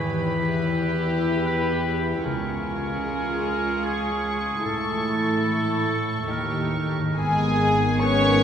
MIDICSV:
0, 0, Header, 1, 11, 480
1, 0, Start_track
1, 0, Tempo, 800000
1, 1354, Time_signature, 3, 2, 24, 8
1, 3273, Tempo, 847458
1, 4960, End_track
2, 0, Start_track
2, 0, Title_t, "Violin section"
2, 0, Program_c, 0, 48
2, 0, Note_on_c, 0, 83, 40
2, 1329, Note_off_c, 0, 83, 0
2, 1359, Note_on_c, 0, 85, 54
2, 4100, Note_off_c, 0, 85, 0
2, 4238, Note_on_c, 0, 80, 69
2, 4697, Note_off_c, 0, 80, 0
2, 4717, Note_on_c, 0, 85, 78
2, 4960, Note_off_c, 0, 85, 0
2, 4960, End_track
3, 0, Start_track
3, 0, Title_t, "Flute"
3, 0, Program_c, 1, 73
3, 4232, Note_on_c, 1, 80, 72
3, 4714, Note_on_c, 1, 85, 80
3, 4723, Note_off_c, 1, 80, 0
3, 4960, Note_off_c, 1, 85, 0
3, 4960, End_track
4, 0, Start_track
4, 0, Title_t, "Clarinet"
4, 0, Program_c, 2, 71
4, 4715, Note_on_c, 2, 71, 53
4, 4960, Note_off_c, 2, 71, 0
4, 4960, End_track
5, 0, Start_track
5, 0, Title_t, "Oboe"
5, 0, Program_c, 3, 68
5, 0, Note_on_c, 3, 71, 71
5, 871, Note_off_c, 3, 71, 0
5, 875, Note_on_c, 3, 71, 69
5, 1183, Note_off_c, 3, 71, 0
5, 1348, Note_on_c, 3, 70, 71
5, 2301, Note_on_c, 3, 68, 63
5, 2310, Note_off_c, 3, 70, 0
5, 2782, Note_off_c, 3, 68, 0
5, 2786, Note_on_c, 3, 69, 64
5, 3751, Note_on_c, 3, 70, 49
5, 3759, Note_off_c, 3, 69, 0
5, 4244, Note_off_c, 3, 70, 0
5, 4247, Note_on_c, 3, 68, 59
5, 4731, Note_on_c, 3, 73, 67
5, 4740, Note_off_c, 3, 68, 0
5, 4960, Note_off_c, 3, 73, 0
5, 4960, End_track
6, 0, Start_track
6, 0, Title_t, "Violin section"
6, 0, Program_c, 4, 48
6, 0, Note_on_c, 4, 67, 57
6, 1328, Note_off_c, 4, 67, 0
6, 1352, Note_on_c, 4, 68, 58
6, 2760, Note_off_c, 4, 68, 0
6, 2782, Note_on_c, 4, 69, 50
6, 3721, Note_off_c, 4, 69, 0
6, 3746, Note_on_c, 4, 67, 31
6, 4098, Note_off_c, 4, 67, 0
6, 4244, Note_on_c, 4, 68, 62
6, 4700, Note_off_c, 4, 68, 0
6, 4726, Note_on_c, 4, 73, 76
6, 4960, Note_off_c, 4, 73, 0
6, 4960, End_track
7, 0, Start_track
7, 0, Title_t, "Harp"
7, 0, Program_c, 5, 46
7, 0, Note_on_c, 5, 52, 45
7, 0, Note_on_c, 5, 71, 34
7, 69, Note_on_c, 5, 59, 32
7, 231, Note_on_c, 5, 64, 35
7, 391, Note_on_c, 5, 67, 38
7, 545, Note_off_c, 5, 71, 0
7, 552, Note_on_c, 5, 71, 41
7, 704, Note_off_c, 5, 67, 0
7, 866, Note_off_c, 5, 64, 0
7, 873, Note_on_c, 5, 64, 41
7, 1022, Note_off_c, 5, 59, 0
7, 1029, Note_on_c, 5, 59, 36
7, 1184, Note_off_c, 5, 64, 0
7, 1191, Note_on_c, 5, 64, 40
7, 1351, Note_on_c, 5, 49, 51
7, 1370, Note_off_c, 5, 52, 0
7, 1370, Note_off_c, 5, 59, 0
7, 1371, Note_off_c, 5, 64, 0
7, 1372, Note_off_c, 5, 71, 0
7, 1510, Note_on_c, 5, 56, 38
7, 1668, Note_on_c, 5, 65, 42
7, 1829, Note_on_c, 5, 68, 39
7, 1985, Note_on_c, 5, 73, 45
7, 2138, Note_off_c, 5, 68, 0
7, 2145, Note_on_c, 5, 68, 36
7, 2298, Note_off_c, 5, 65, 0
7, 2306, Note_on_c, 5, 65, 42
7, 2457, Note_off_c, 5, 56, 0
7, 2464, Note_on_c, 5, 56, 35
7, 2616, Note_off_c, 5, 65, 0
7, 2624, Note_on_c, 5, 65, 35
7, 2785, Note_on_c, 5, 45, 45
7, 2803, Note_off_c, 5, 49, 0
7, 2803, Note_off_c, 5, 68, 0
7, 2804, Note_off_c, 5, 56, 0
7, 2804, Note_off_c, 5, 65, 0
7, 2944, Note_on_c, 5, 52, 29
7, 3108, Note_on_c, 5, 64, 33
7, 3420, Note_off_c, 5, 73, 0
7, 3427, Note_on_c, 5, 73, 31
7, 3583, Note_on_c, 5, 69, 26
7, 3739, Note_on_c, 5, 51, 35
7, 3763, Note_off_c, 5, 52, 0
7, 3763, Note_off_c, 5, 69, 0
7, 3764, Note_off_c, 5, 64, 0
7, 3765, Note_off_c, 5, 45, 0
7, 3908, Note_on_c, 5, 63, 26
7, 4069, Note_off_c, 5, 73, 0
7, 4071, Note_on_c, 5, 67, 25
7, 4076, Note_on_c, 5, 73, 26
7, 4135, Note_on_c, 5, 44, 45
7, 4154, Note_off_c, 5, 51, 0
7, 4160, Note_on_c, 5, 51, 39
7, 4186, Note_on_c, 5, 68, 40
7, 4211, Note_on_c, 5, 71, 40
7, 4258, Note_off_c, 5, 67, 0
7, 4260, Note_off_c, 5, 73, 0
7, 4960, Note_off_c, 5, 44, 0
7, 4960, Note_off_c, 5, 51, 0
7, 4960, Note_off_c, 5, 63, 0
7, 4960, Note_off_c, 5, 68, 0
7, 4960, Note_off_c, 5, 71, 0
7, 4960, End_track
8, 0, Start_track
8, 0, Title_t, "Viola section"
8, 0, Program_c, 6, 48
8, 0, Note_on_c, 6, 64, 51
8, 1333, Note_off_c, 6, 64, 0
8, 1354, Note_on_c, 6, 65, 52
8, 2762, Note_off_c, 6, 65, 0
8, 2785, Note_on_c, 6, 64, 47
8, 3723, Note_off_c, 6, 64, 0
8, 3744, Note_on_c, 6, 63, 32
8, 4097, Note_off_c, 6, 63, 0
8, 4240, Note_on_c, 6, 59, 51
8, 4244, Note_on_c, 6, 51, 45
8, 4960, Note_off_c, 6, 51, 0
8, 4960, Note_off_c, 6, 59, 0
8, 4960, End_track
9, 0, Start_track
9, 0, Title_t, "French horn section"
9, 0, Program_c, 7, 60
9, 4239, Note_on_c, 7, 56, 64
9, 4698, Note_off_c, 7, 56, 0
9, 4724, Note_on_c, 7, 61, 73
9, 4960, Note_off_c, 7, 61, 0
9, 4960, End_track
10, 0, Start_track
10, 0, Title_t, "Cello section"
10, 0, Program_c, 8, 48
10, 0, Note_on_c, 8, 40, 47
10, 1327, Note_off_c, 8, 40, 0
10, 1350, Note_on_c, 8, 37, 53
10, 2760, Note_off_c, 8, 37, 0
10, 2781, Note_on_c, 8, 45, 46
10, 3725, Note_off_c, 8, 45, 0
10, 3746, Note_on_c, 8, 39, 39
10, 4120, Note_off_c, 8, 39, 0
10, 4238, Note_on_c, 8, 44, 50
10, 4960, Note_off_c, 8, 44, 0
10, 4960, End_track
11, 0, Start_track
11, 0, Title_t, "Double bass section"
11, 0, Program_c, 10, 48
11, 4239, Note_on_c, 10, 32, 57
11, 4960, Note_off_c, 10, 32, 0
11, 4960, End_track
0, 0, End_of_file